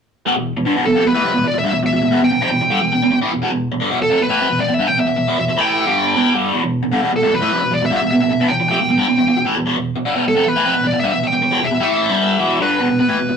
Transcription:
0.26 overdriven electric guitar E2 B2
0.35 overdriven electric guitar E2 B2
0.57 overdriven electric guitar E2 B2
0.65 overdriven electric guitar G2 D3
0.75 overdriven electric guitar E2 B2
0.86 overdriven electric guitar E2 B2, lead electric guitar A4
0.95 overdriven electric guitar F2 C3
1.05 overdriven electric guitar E2 B2, lead electric guitar B4
1.14 overdriven electric guitar A2 E3
1.23 overdriven electric guitar F2 C3
1.34 overdriven electric guitar E2 B2
1.44 overdriven electric guitar E2 B2, lead electric guitar D5
1.54 overdriven electric guitar E2 B2
1.59 lead electric guitar E5
1.64 overdriven electric guitar G2 D3
1.72 overdriven electric guitar E2 B2, lead electric guitar E5
1.83 overdriven electric guitar E2 B2, lead electric guitar E5
1.93 overdriven electric guitar E2 B2
2.02 overdriven electric guitar E2 B2
2.11 overdriven electric guitar E2 B2
2.21 overdriven electric guitar E2 B2, lead electric guitar G5
2.31 overdriven electric guitar E2 B2
2.41 overdriven electric guitar F2 C3, lead electric guitar G5
2.51 overdriven electric guitar E2 B2
2.61 overdriven electric guitar E2 B2
2.70 overdriven electric guitar G2 D3
2.81 overdriven electric guitar E2 B2
2.92 overdriven electric guitar E2 B2
3.02 overdriven electric guitar E2 B2
3.11 overdriven electric guitar E2 B2
3.21 overdriven electric guitar A2 E3
3.32 overdriven electric guitar E2 B2
3.42 overdriven electric guitar E2 B2
3.51 overdriven electric guitar E2 B2
3.72 overdriven electric guitar E2 B2
3.80 overdriven electric guitar G2 D3
3.91 overdriven electric guitar E2 B2
4.00 overdriven electric guitar E2 B2, lead electric guitar A4
4.10 overdriven electric guitar F2 C3
4.20 overdriven electric guitar E2 B2, lead electric guitar B4
4.29 overdriven electric guitar A2 E3
4.40 overdriven electric guitar F2 C3
4.49 overdriven electric guitar E2 B2
4.59 overdriven electric guitar E2 B2, lead electric guitar D5
4.68 overdriven electric guitar E2 B2
4.74 lead electric guitar E5
4.79 overdriven electric guitar G2 D3
4.87 overdriven electric guitar E2 B2, lead electric guitar G5
4.98 overdriven electric guitar E2 B2, lead electric guitar E5
5.07 overdriven electric guitar E2 B2
5.16 overdriven electric guitar E2 B2
5.27 overdriven electric guitar E2 B2
5.38 overdriven electric guitar E2 B2, lead electric guitar E5
5.48 overdriven electric guitar E2 B2
5.57 overdriven electric guitar A2 E3 A3, lead electric guitar G5
5.86 overdriven electric guitar G2 D3 G3
6.16 overdriven electric guitar E2 B2 E3
6.34 overdriven electric guitar G2 D3 G3
6.53 overdriven electric guitar E2 B2
6.63 overdriven electric guitar E2 B2
6.83 overdriven electric guitar E2 B2
6.92 overdriven electric guitar G2 D3
7.02 overdriven electric guitar E2 B2
7.12 overdriven electric guitar E2 B2
7.16 lead electric guitar A4
7.22 overdriven electric guitar F2 C3
7.32 overdriven electric guitar E2 B2, lead electric guitar B4
7.41 overdriven electric guitar A2 E3
7.51 overdriven electric guitar F2 C3
7.62 overdriven electric guitar E2 B2
7.71 overdriven electric guitar E2 B2, lead electric guitar D5
7.81 overdriven electric guitar E2 B2
7.86 lead electric guitar E5
7.90 overdriven electric guitar G2 D3
7.97 lead electric guitar E5
8.01 overdriven electric guitar E2 B2
8.11 overdriven electric guitar E2 B2, lead electric guitar E5
8.21 overdriven electric guitar E2 B2
8.29 overdriven electric guitar E2 B2
8.40 overdriven electric guitar E2 B2
8.48 overdriven electric guitar E2 B2, lead electric guitar G5
8.60 overdriven electric guitar E2 B2
8.69 overdriven electric guitar F2 C3, lead electric guitar G5
8.80 overdriven electric guitar E2 B2
8.89 overdriven electric guitar E2 B2
8.98 overdriven electric guitar G2 D3
9.08 overdriven electric guitar E2 B2
9.18 overdriven electric guitar E2 B2
9.28 overdriven electric guitar E2 B2
9.37 overdriven electric guitar E2 B2
9.45 overdriven electric guitar A2 E3
9.56 overdriven electric guitar E2 B2
9.66 overdriven electric guitar E2 B2
9.77 overdriven electric guitar E2 B2
9.96 overdriven electric guitar E2 B2
10.05 overdriven electric guitar G2 D3
10.15 overdriven electric guitar E2 B2
10.26 overdriven electric guitar E2 B2, lead electric guitar A4
10.35 overdriven electric guitar F2 C3
10.45 overdriven electric guitar E2 B2, lead electric guitar B4
10.56 overdriven electric guitar A2 E3
10.65 overdriven electric guitar F2 C3
10.75 overdriven electric guitar E2 B2
10.84 overdriven electric guitar E2 B2, lead electric guitar D5
10.93 overdriven electric guitar E2 B2
11.00 overdriven electric guitar G2 D3, lead electric guitar E5
11.13 overdriven electric guitar E2 B2, lead electric guitar E5
11.24 overdriven electric guitar E2 B2, lead electric guitar G5
11.32 overdriven electric guitar E2 B2
11.42 overdriven electric guitar E2 B2
11.51 overdriven electric guitar E2 B2
11.61 overdriven electric guitar E2 B2, lead electric guitar E5
11.71 overdriven electric guitar E2 B2
11.80 overdriven electric guitar A2 E3 A3, lead electric guitar E5
12.09 overdriven electric guitar G2 D3 G3
12.38 overdriven electric guitar E2 B2 E3
12.60 overdriven electric guitar G2 D3 G3, lead electric guitar B4
12.79 overdriven electric guitar E2 B2
12.89 overdriven electric guitar E2 B2
12.99 overdriven electric guitar E2 B2, lead electric guitar B4
13.08 overdriven electric guitar A2 E3
13.18 overdriven electric guitar E2 B2
13.29 overdriven electric guitar E2 B2

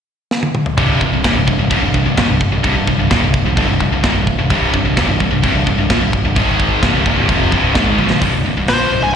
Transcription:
0.31 snare
0.43 high tom
0.55 mid tom
0.66 floor tom
0.78 picked electric bass C1, distorted electric guitar C2 G2 C3, kick, crash
1.01 picked electric bass C1, distorted electric guitar C2 G2, kick
1.13 picked electric bass C1, distorted electric guitar C2 G2
1.24 picked electric bass D#1, distorted electric guitar D#2 A#2, kick, snare, crash
1.35 picked electric bass C1, distorted electric guitar C2 G2
1.47 picked electric bass C1, distorted electric guitar C2 G2, kick
1.58 picked electric bass C1, distorted electric guitar C2 G2
1.70 picked electric bass C1, distorted electric guitar C2 G2, kick, crash
1.82 picked electric bass C1, distorted electric guitar C2 G2
1.94 picked electric bass C1, distorted electric guitar C2 G2, kick
2.05 picked electric bass C1, distorted electric guitar C2 G2
2.17 picked electric bass A#1, distorted electric guitar A#2 F3, kick, snare, crash
2.29 picked electric bass C1, distorted electric guitar C2 G2
2.41 kick
2.52 picked electric bass C1, distorted electric guitar C2 G2
2.63 picked electric bass C1, distorted electric guitar C2 G2, kick, crash
2.75 picked electric bass C1, distorted electric guitar C2 G2
2.87 picked electric bass C1, distorted electric guitar C2 G2, kick
2.99 picked electric bass C1, distorted electric guitar C2 G2
3.10 picked electric bass D#1, distorted electric guitar D#2 A#2, kick, snare, crash
3.22 picked electric bass C1, distorted electric guitar C2 G2
3.34 kick
3.45 picked electric bass C1, distorted electric guitar C2 G2
3.57 picked electric bass G1, distorted electric guitar G2 D3, kick, crash
3.69 picked electric bass C1, distorted electric guitar C2 G2
3.80 picked electric bass C1, distorted electric guitar C2 G2, kick
3.92 picked electric bass C1, distorted electric guitar C2 G2
4.03 picked electric bass D#1, distorted electric guitar D#2 A#2, kick, snare, crash
4.15 picked electric bass C1, distorted electric guitar C2 G2
4.27 kick
4.38 picked electric bass C1, distorted electric guitar C2 G2
4.50 picked electric bass C1, distorted electric guitar C2 G2 C3, kick, crash
4.74 picked electric bass C1, distorted electric guitar C2 G2, kick
4.85 picked electric bass C1, distorted electric guitar C2 G2
4.97 picked electric bass D#1, distorted electric guitar D#2 A#2, kick, snare, crash
5.08 picked electric bass C1, distorted electric guitar C2 G2
5.20 picked electric bass C1, distorted electric guitar C2 G2, kick
5.31 picked electric bass C1, distorted electric guitar C2 G2
5.43 picked electric bass C1, distorted electric guitar C2 G2, kick, crash
5.55 picked electric bass C1, distorted electric guitar C2 G2
5.67 picked electric bass C1, distorted electric guitar C2 G2, kick
5.78 picked electric bass C1, distorted electric guitar C2 G2
5.90 picked electric bass A#1, distorted electric guitar A#2 F3, kick, snare, crash
6.01 picked electric bass C1, distorted electric guitar C2 G2
6.13 kick
6.24 picked electric bass C1, distorted electric guitar C2 G2
6.36 picked electric bass G#1, distorted electric guitar G#2 D#3 G#3, kick, crash
6.60 kick
6.82 picked electric bass C1, distorted electric guitar C2 G2 C3, kick, snare, crash
7.06 picked electric bass D#1, distorted electric guitar D#2 A#2, kick
7.17 picked electric bass C1, distorted electric guitar C2 G2
7.29 picked electric bass F1, distorted electric guitar F2 C3 F3, kick, crash
7.52 picked electric bass C1, distorted electric guitar C2 G2 C3, kick
7.75 picked electric bass G#1, distorted electric guitar G#2 D#3 G#3, kick, snare, crash
7.98 picked electric bass A#1, distorted electric guitar A#2 F3, high tom
8.10 picked electric bass A#1, distorted electric guitar A#2 F3, snare
8.21 picked electric bass C1, distorted electric guitar C2 G2, kick, open hi-hat
8.33 picked electric bass C1, distorted electric guitar C2 G2
8.45 picked electric bass C1, distorted electric guitar C2 G2
8.57 picked electric bass C1, distorted electric guitar C2 G2
8.68 picked electric bass A#1, distorted electric guitar A#2 F3 A#3, lead electric guitar C5, snare, open hi-hat
8.92 picked electric bass C1, distorted electric guitar C2 G2
9.03 picked electric bass C1, distorted electric guitar C2 G2, lead electric guitar G#5

